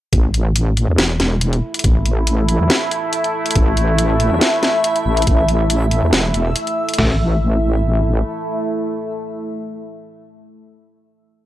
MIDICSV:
0, 0, Header, 1, 5, 480
1, 0, Start_track
1, 0, Tempo, 428571
1, 143, Time_signature, 4, 2, 24, 8
1, 12834, End_track
2, 0, Start_track
2, 0, Title_t, "Synth texture"
2, 0, Program_c, 0, 99
2, 3984, Note_on_c, 0, 76, 89
2, 7834, Note_off_c, 0, 76, 0
2, 12834, End_track
3, 0, Start_track
3, 0, Title_t, "Ambient pad"
3, 0, Program_c, 1, 92
3, 144, Note_on_c, 1, 64, 81
3, 146, Note_on_c, 1, 57, 82
3, 7811, Note_off_c, 1, 57, 0
3, 7811, Note_off_c, 1, 64, 0
3, 7824, Note_on_c, 1, 57, 80
3, 7824, Note_on_c, 1, 64, 85
3, 11884, Note_off_c, 1, 64, 0
3, 11885, Note_off_c, 1, 57, 0
3, 12834, End_track
4, 0, Start_track
4, 0, Title_t, "Wobble bass"
4, 0, Program_c, 2, 39
4, 142, Note_on_c, 2, 33, 96
4, 975, Note_off_c, 2, 33, 0
4, 990, Note_on_c, 2, 40, 104
4, 1093, Note_off_c, 2, 40, 0
4, 1101, Note_on_c, 2, 28, 91
4, 1808, Note_off_c, 2, 28, 0
4, 2062, Note_on_c, 2, 33, 99
4, 2895, Note_off_c, 2, 33, 0
4, 2911, Note_on_c, 2, 40, 100
4, 3014, Note_off_c, 2, 40, 0
4, 3982, Note_on_c, 2, 33, 99
4, 4815, Note_off_c, 2, 33, 0
4, 4832, Note_on_c, 2, 40, 106
4, 4934, Note_off_c, 2, 40, 0
4, 5662, Note_on_c, 2, 33, 89
4, 5885, Note_off_c, 2, 33, 0
4, 5903, Note_on_c, 2, 33, 97
4, 6736, Note_off_c, 2, 33, 0
4, 6752, Note_on_c, 2, 40, 106
4, 6854, Note_off_c, 2, 40, 0
4, 6863, Note_on_c, 2, 28, 105
4, 7085, Note_off_c, 2, 28, 0
4, 7102, Note_on_c, 2, 28, 94
4, 7325, Note_off_c, 2, 28, 0
4, 7824, Note_on_c, 2, 33, 95
4, 9218, Note_off_c, 2, 33, 0
4, 12834, End_track
5, 0, Start_track
5, 0, Title_t, "Drums"
5, 142, Note_on_c, 9, 36, 116
5, 142, Note_on_c, 9, 42, 83
5, 254, Note_off_c, 9, 36, 0
5, 254, Note_off_c, 9, 42, 0
5, 382, Note_on_c, 9, 42, 56
5, 494, Note_off_c, 9, 42, 0
5, 623, Note_on_c, 9, 42, 85
5, 735, Note_off_c, 9, 42, 0
5, 863, Note_on_c, 9, 42, 53
5, 975, Note_off_c, 9, 42, 0
5, 1102, Note_on_c, 9, 38, 119
5, 1102, Note_on_c, 9, 42, 85
5, 1214, Note_off_c, 9, 38, 0
5, 1214, Note_off_c, 9, 42, 0
5, 1342, Note_on_c, 9, 38, 62
5, 1342, Note_on_c, 9, 42, 56
5, 1454, Note_off_c, 9, 38, 0
5, 1454, Note_off_c, 9, 42, 0
5, 1582, Note_on_c, 9, 42, 84
5, 1694, Note_off_c, 9, 42, 0
5, 1712, Note_on_c, 9, 42, 38
5, 1824, Note_off_c, 9, 42, 0
5, 1952, Note_on_c, 9, 42, 55
5, 2007, Note_off_c, 9, 42, 0
5, 2007, Note_on_c, 9, 42, 69
5, 2062, Note_off_c, 9, 42, 0
5, 2062, Note_on_c, 9, 36, 123
5, 2062, Note_on_c, 9, 42, 82
5, 2174, Note_off_c, 9, 36, 0
5, 2174, Note_off_c, 9, 42, 0
5, 2302, Note_on_c, 9, 42, 57
5, 2414, Note_off_c, 9, 42, 0
5, 2543, Note_on_c, 9, 42, 85
5, 2655, Note_off_c, 9, 42, 0
5, 2783, Note_on_c, 9, 42, 56
5, 2895, Note_off_c, 9, 42, 0
5, 3023, Note_on_c, 9, 38, 123
5, 3023, Note_on_c, 9, 42, 85
5, 3135, Note_off_c, 9, 38, 0
5, 3135, Note_off_c, 9, 42, 0
5, 3264, Note_on_c, 9, 42, 57
5, 3376, Note_off_c, 9, 42, 0
5, 3502, Note_on_c, 9, 42, 87
5, 3614, Note_off_c, 9, 42, 0
5, 3632, Note_on_c, 9, 42, 39
5, 3744, Note_off_c, 9, 42, 0
5, 3872, Note_on_c, 9, 42, 54
5, 3927, Note_off_c, 9, 42, 0
5, 3927, Note_on_c, 9, 42, 69
5, 3981, Note_off_c, 9, 42, 0
5, 3981, Note_on_c, 9, 42, 79
5, 3982, Note_on_c, 9, 36, 127
5, 4093, Note_off_c, 9, 42, 0
5, 4094, Note_off_c, 9, 36, 0
5, 4223, Note_on_c, 9, 42, 53
5, 4335, Note_off_c, 9, 42, 0
5, 4463, Note_on_c, 9, 42, 82
5, 4575, Note_off_c, 9, 42, 0
5, 4702, Note_on_c, 9, 42, 54
5, 4814, Note_off_c, 9, 42, 0
5, 4942, Note_on_c, 9, 38, 125
5, 4942, Note_on_c, 9, 42, 82
5, 5054, Note_off_c, 9, 38, 0
5, 5054, Note_off_c, 9, 42, 0
5, 5182, Note_on_c, 9, 38, 67
5, 5182, Note_on_c, 9, 42, 56
5, 5294, Note_off_c, 9, 38, 0
5, 5294, Note_off_c, 9, 42, 0
5, 5422, Note_on_c, 9, 42, 83
5, 5534, Note_off_c, 9, 42, 0
5, 5551, Note_on_c, 9, 42, 37
5, 5663, Note_off_c, 9, 42, 0
5, 5792, Note_on_c, 9, 42, 53
5, 5847, Note_off_c, 9, 42, 0
5, 5847, Note_on_c, 9, 42, 69
5, 5903, Note_off_c, 9, 42, 0
5, 5903, Note_on_c, 9, 36, 125
5, 5903, Note_on_c, 9, 42, 79
5, 6015, Note_off_c, 9, 36, 0
5, 6015, Note_off_c, 9, 42, 0
5, 6143, Note_on_c, 9, 42, 54
5, 6255, Note_off_c, 9, 42, 0
5, 6383, Note_on_c, 9, 42, 82
5, 6495, Note_off_c, 9, 42, 0
5, 6623, Note_on_c, 9, 42, 52
5, 6735, Note_off_c, 9, 42, 0
5, 6863, Note_on_c, 9, 38, 126
5, 6863, Note_on_c, 9, 42, 77
5, 6975, Note_off_c, 9, 38, 0
5, 6975, Note_off_c, 9, 42, 0
5, 7103, Note_on_c, 9, 42, 54
5, 7215, Note_off_c, 9, 42, 0
5, 7343, Note_on_c, 9, 42, 83
5, 7455, Note_off_c, 9, 42, 0
5, 7472, Note_on_c, 9, 42, 36
5, 7584, Note_off_c, 9, 42, 0
5, 7712, Note_on_c, 9, 42, 52
5, 7768, Note_off_c, 9, 42, 0
5, 7768, Note_on_c, 9, 42, 67
5, 7823, Note_on_c, 9, 38, 107
5, 7823, Note_on_c, 9, 43, 110
5, 7823, Note_on_c, 9, 46, 91
5, 7880, Note_off_c, 9, 42, 0
5, 7935, Note_off_c, 9, 38, 0
5, 7935, Note_off_c, 9, 43, 0
5, 7935, Note_off_c, 9, 46, 0
5, 12834, End_track
0, 0, End_of_file